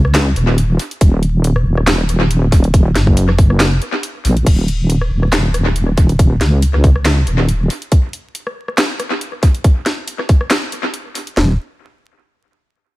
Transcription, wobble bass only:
0.00 0.35 C#2 loud
0.36 0.78 D#1 loud
1.01 1.64 D#1 loud
1.66 2.50 D#1 loud
2.52 2.94 D#1 loud
2.95 3.80 F#1 loud
4.25 4.45 A#1 loud
4.46 5.10 D#1 loud
5.11 5.96 D#1 loud
5.98 6.39 D#1 loud
6.41 7.26 C#2 loud
7.27 7.69 D#1 medium
11.37 11.57 D#1 medium

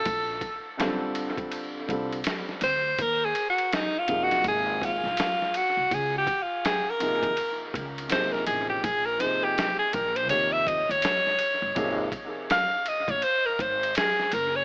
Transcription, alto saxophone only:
0.00 0.67 A4 medium
2.64 3.03 C5 loud
3.02 3.27 A#4 loud
3.25 3.48 G#4 medium
3.50 3.75 F#4 medium
3.74 4.00 D#4 medium
3.99 4.25 F4 medium
4.24 4.47 F#4 medium
4.48 4.87 G#4 loud
4.85 5.59 F4 medium
5.57 5.95 F#4 medium
5.94 6.17 G#4 medium
6.18 6.44 G4 medium
6.42 6.65 F4 medium
6.66 6.92 G#4 medium
6.90 7.63 A#4 loud
8.12 8.34 C5 medium
8.32 8.46 A#4 medium
8.47 8.68 G#4 medium
8.70 8.85 G4 medium
8.83 9.07 G#4 medium
9.06 9.22 A#4 medium
9.20 9.45 C5 medium
9.44 9.78 G4 medium
9.79 9.95 G#4 medium
9.94 10.18 A#4 medium
10.16 10.29 C5 medium
10.30 10.54 C#5 loud
10.52 10.69 E5 loud
10.67 10.92 D#5 loud
10.91 12.00 C#5 medium
12.52 12.90 F5 loud
12.88 13.12 D#5 loud
13.11 13.25 C#5 loud
13.24 13.47 C5 loud
13.46 13.62 A#4 medium
13.61 13.96 C5 medium
13.97 14.35 G#4 medium
14.34 14.58 A#4 medium
14.56 14.65 C#5 medium

